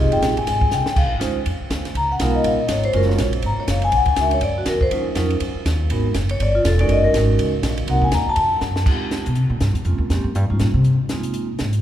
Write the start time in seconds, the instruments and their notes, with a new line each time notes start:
Already playing: vibraphone C4 F4 G4
0.00 vibraphone D#4 G#4 D#5
0.06 upright bass G#1
0.12 upright bass F1, vibraphone G5, ride
0.22 upright bass A#1, kick, snare, hi-hat pedal, ride
0.37 vibraphone G#5, ride
0.47 upright bass G#1, kick, snare, ride
0.61 kick
0.71 upright bass C2, vibraphone G5, snare, hi-hat pedal
0.86 muted upright bass stroke, snare
0.96 upright bass C#2, vibraphone F5, kick, crash
1.05 upright bass A#1
1.14 upright bass G#1
1.19 upright bass D#2, vibraphone G#3 C#4 D#4 F4 C5, kick, snare, hi-hat pedal, ride
1.46 upright bass F2, kick, ride
1.60 muted upright bass stroke
1.70 upright bass D2, kick, snare, hi-hat pedal, ride
1.85 snare, ride
1.95 upright bass C#2, vibraphone A#5, kick, ride
2.12 vibraphone F#5
2.19 upright bass B1, vibraphone G#3 B3 D#4 F4 A#4 F5, kick, snare, hi-hat pedal, ride
2.35 vibraphone D#5
2.44 upright bass A#1, vibraphone F5, kick, ride
2.60 vibraphone D#5
2.68 upright bass G#1, vibraphone C#5, kick, snare, hi-hat pedal, ride
2.83 vibraphone C5, ride
2.93 upright bass F#1, vibraphone G#3 C#4 F4 F#4 A#4, kick, ride
3.02 snare
3.09 vibraphone C#5, snare
3.18 upright bass A#1, kick, snare, hi-hat pedal, ride
3.33 ride
3.42 upright bass G#1, vibraphone A#5, kick, ride
3.57 vibraphone C#5, muted upright bass stroke
3.67 upright bass F#1, vibraphone F5, kick, snare, hi-hat pedal, ride
3.82 vibraphone G#5, ride
3.92 upright bass A#1, kick, ride
3.96 vibraphone F#5
4.06 vibraphone G#5, muted upright bass stroke, kick, ride
4.16 upright bass C#2, vibraphone G#3 C#4 D4 F#4 A#4, kick, snare, hi-hat pedal, ride
4.21 vibraphone E5
4.31 vibraphone C#5, ride
4.41 upright bass F#2, vibraphone D5, kick, ride
4.58 vibraphone F#4
4.66 upright bass E2, vibraphone A#4, kick, snare, hi-hat pedal, ride
4.81 vibraphone C5, kick
4.91 upright bass D#2, vibraphone F#3 C#4 D#4 F4 A#4, kick, ride
5.15 upright bass F2, vibraphone F#3 C#4 D#4 F4 A#4, kick, snare, hi-hat pedal, ride
5.30 ride
5.40 upright bass F#2, kick, ride
5.55 muted upright bass stroke
5.65 upright bass D#2, kick, snare, hi-hat pedal, ride
5.90 upright bass G#1, vibraphone G#3 B3 D#4 F#4 A#4, kick, ride
6.14 upright bass F#1, kick, snare, hi-hat pedal, ride
6.29 vibraphone C#5, ride
6.40 upright bass G1, vibraphone D5, kick, ride
6.55 vibraphone F4
6.64 upright bass E1, vibraphone A4, kick, snare, hi-hat pedal, ride
6.79 vibraphone G#3 C#4 D#4 F#4 A#4 D5, ride
6.89 upright bass F#1, vibraphone D#5, kick, ride
7.04 vibraphone A#4
7.13 upright bass G#1, vibraphone G#3 C#4 D#4 F#4 A#4, kick, snare, hi-hat pedal, ride
7.39 upright bass C#2, kick, ride
7.63 upright bass A#1, kick, snare, hi-hat pedal, ride
7.77 ride
7.87 upright bass C2, vibraphone A#3 C4 D#4 F#4 A#4 F#5, kick, ride
8.02 vibraphone G#5, kick
8.12 upright bass D#2, vibraphone A#5, kick, snare, hi-hat pedal, ride
8.27 vibraphone A5, muted upright bass stroke
8.36 upright bass F2, kick, ride
8.61 upright bass F#2, snare, hi-hat pedal
8.76 snare
8.86 vibraphone G#3 C4 D#4 F4 G4, kick, crash
9.11 snare, closed hi-hat
9.26 upright bass B2, closed hi-hat
9.35 upright bass C3, closed hi-hat
9.50 upright bass A#2
9.60 upright bass G2, snare, closed hi-hat
9.73 upright bass E2, closed hi-hat
9.85 upright bass F2, vibraphone G#3 A#3 C4 C#4 F4, closed hi-hat
9.98 upright bass D#2
10.10 upright bass F2, vibraphone G#3 A#3 C4 C#4 G4, snare, closed hi-hat
10.24 upright bass F#2
10.35 upright bass G2, closed hi-hat
10.50 upright bass G#2, vibraphone G3 A#3 C#4 D#4 F4
10.60 upright bass A#2, snare, closed hi-hat
10.74 upright bass C3
10.84 closed hi-hat
11.09 vibraphone G#3 A#3 C4 D#4 F4, snare, closed hi-hat
11.23 closed hi-hat
11.34 closed hi-hat
11.59 upright bass G#2, snare, closed hi-hat
11.73 closed hi-hat